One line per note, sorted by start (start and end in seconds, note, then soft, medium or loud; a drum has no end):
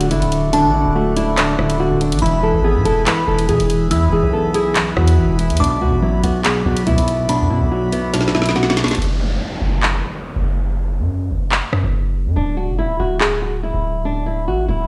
0.00 0.12 D1 loud
0.00 0.32 A3 medium
0.00 2.18 A3 medium
0.00 0.53 D4 medium
0.00 2.18 F#4 medium
0.00 2.19 D5 medium
0.00 2.18 F#5 medium
0.00 0.49 D6 loud
0.00 closed hi-hat medium
0.11 0.21 F#1 loud
0.11 0.52 D3 medium
0.11 0.51 E4 medium
0.11 closed hi-hat medium
0.22 0.66 D1 loud
0.22 closed hi-hat medium
0.32 closed hi-hat medium
0.53 0.73 D3 medium
0.53 0.72 D4 loud
0.53 1.76 A5 loud
0.53 closed hi-hat medium
0.64 0.84 A1 loud
0.74 1.36 D3 medium
0.74 0.93 E4 medium
0.85 1.56 D1 loud
0.95 2.01 A3 medium
0.95 1.15 F#4 medium
1.16 2.22 D4 loud
1.16 1.36 E4 medium
1.16 closed hi-hat medium
1.37 1.57 D3 medium
1.37 1.56 D4 medium
1.37 cross-stick medium
1.37 clap loud
1.37 closed hi-hat medium
1.58 1.90 D1 loud
1.58 1.79 D3 medium
1.58 1.78 E4 medium
1.58 cross-stick medium
1.70 closed hi-hat medium
1.80 2.22 D3 medium
1.80 1.99 F#4 medium
1.91 2.14 D1 loud
2.01 2.20 D4 medium
2.01 closed hi-hat medium
2.12 2.22 A1 medium
2.12 closed hi-hat medium
2.19 2.53 E1 loud
2.19 2.42 E3 medium
2.19 2.41 E4 loud
2.19 5.57 G#4 medium
2.19 8.94 B4 medium
2.19 5.57 E5 medium
2.19 3.87 B5 loud
2.19 8.94 B5 medium
2.19 closed hi-hat medium
2.26 closed hi-hat soft
2.43 3.05 E3 medium
2.43 2.62 A4 medium
2.54 2.77 G#1 loud
2.64 3.70 B3 medium
2.64 2.83 G#4 medium
2.76 2.85 G#2 loud
2.85 3.06 E1 loud
2.85 3.91 E4 loud
2.85 3.05 A4 medium
2.85 closed hi-hat medium
3.06 3.26 E3 medium
3.06 3.26 B4 loud
3.06 clap loud
3.06 closed hi-hat medium
3.28 3.50 E1 loud
3.28 3.48 E3 medium
3.28 3.47 A4 medium
3.39 closed hi-hat medium
3.49 3.59 B2 loud
3.49 3.90 E3 medium
3.49 3.89 G#4 medium
3.49 closed hi-hat medium
3.60 3.93 E1 loud
3.60 closed hi-hat medium
3.70 closed hi-hat medium
3.91 4.09 E2 loud
3.91 4.11 E3 medium
3.91 4.10 E4 medium
3.91 5.14 E6 medium
3.91 closed hi-hat medium
4.07 4.23 E1 loud
4.12 4.74 E3 medium
4.12 4.32 G#4 medium
4.23 4.94 B1 loud
4.33 5.39 B3 medium
4.33 4.52 A4 medium
4.54 5.60 E4 loud
4.54 4.74 G#4 loud
4.54 closed hi-hat medium
4.76 4.96 E3 medium
4.76 clap loud
4.76 closed hi-hat medium
4.97 5.19 E2 loud
4.97 5.17 E3 medium
4.97 5.36 F#4 medium
4.97 cross-stick medium
5.08 closed hi-hat medium
5.18 5.28 G#1 loud
5.18 5.60 E3 medium
5.29 5.52 E1 loud
5.39 5.58 E4 medium
5.39 closed hi-hat medium
5.50 5.60 E2 medium
5.50 closed hi-hat medium
5.57 5.83 B1 loud
5.57 5.80 B2 loud
5.57 5.79 D4 medium
5.57 8.95 F#4 medium
5.57 8.95 D5 medium
5.57 7.25 D6 loud
5.57 closed hi-hat medium
5.64 closed hi-hat medium
5.81 5.92 D2 loud
5.81 6.43 B2 medium
5.81 6.01 F#4 medium
5.92 6.22 A1 loud
6.02 7.08 F#3 medium
6.02 6.21 E4 medium
6.23 6.64 B1 loud
6.23 7.29 B3 medium
6.23 6.43 F#4 medium
6.23 closed hi-hat medium
6.45 6.65 B2 medium
6.45 6.64 G#4 medium
6.45 clap loud
6.45 closed hi-hat medium
6.66 6.88 B1 loud
6.66 6.86 B2 medium
6.66 6.85 F#4 medium
6.77 closed hi-hat medium
6.87 6.97 D2 loud
6.87 7.28 B2 medium
6.87 7.26 E4 loud
6.87 closed hi-hat medium
6.98 7.42 B1 loud
6.98 closed hi-hat medium
7.08 closed hi-hat medium
7.29 7.49 B2 medium
7.29 7.48 D4 medium
7.29 8.52 B5 loud
7.29 closed hi-hat medium
7.40 7.60 F#2 loud
7.50 8.12 B2 medium
7.50 7.69 E4 medium
7.61 8.84 B1 loud
7.71 8.77 F#3 medium
7.71 7.91 F#4 medium
7.92 8.98 B3 loud
7.92 8.11 E4 medium
7.92 closed hi-hat medium
8.13 8.34 B2 medium
8.13 8.33 D4 medium
8.13 snare medium
8.13 closed hi-hat medium
8.21 snare medium
8.28 snare medium
8.35 8.54 B2 medium
8.35 8.54 E4 medium
8.35 snare medium
8.42 snare medium
8.42 closed hi-hat medium
8.49 snare medium
8.56 8.98 B2 medium
8.56 8.75 F#4 medium
8.56 snare medium
8.63 snare medium
8.70 snare loud
8.77 8.96 D4 medium
8.77 snare medium
8.77 closed hi-hat medium
8.84 snare loud
8.88 snare loud
8.88 closed hi-hat medium
8.95 9.39 F#1 loud
8.95 closed hi-hat medium
8.95 downlifter medium
9.02 closed hi-hat soft
9.61 10.02 F#1 loud
9.83 clap loud
10.36 11.01 F#1 loud
10.99 11.32 F#2 loud
11.30 11.61 F#1 loud
11.52 clap loud
11.73 11.83 F#2 loud
11.73 cross-stick medium
11.84 12.28 F#1 loud
12.26 12.36 F#2 loud
12.36 12.70 D1 loud
12.36 12.55 D4 medium
12.57 12.76 F#4 medium
12.68 12.86 F#1 loud
12.79 12.98 E4 medium
12.84 12.99 D1 loud
13.00 13.71 D1 loud
13.00 13.19 F#4 medium
13.20 13.40 G#4 medium
13.20 clap loud
13.42 13.61 F#4 medium
13.63 14.03 E4 medium
13.74 14.49 D1 loud
14.05 14.24 D4 loud
14.26 14.45 E4 medium
14.47 14.67 A1 medium
14.47 14.67 F#4 medium
14.68 14.87 D1 loud
14.68 14.87 E4 medium